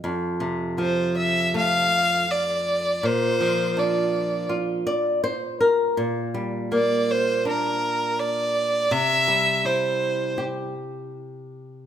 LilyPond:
<<
  \new Staff \with { instrumentName = "Violin" } { \time 4/4 \key f \major \tempo 4 = 81 r4 c''8 e''8 f''4 d''4 | c''4 d''4 r2 | r4 d''8 c''8 bes'4 d''4 | e''4 c''4 r2 | }
  \new Staff \with { instrumentName = "Nylon-string guitar" } { \time 4/4 \key f \major << { r1 | r2 r8 d''8 c''8 bes'8 | r1 | r1 | } \\ { f,8 c8 f4 a2 | bes,8 f8 d'4 f'2 | bes,8 g8 bes4 d'2 | c8 g8 e'4 g'2 | } >> }
>>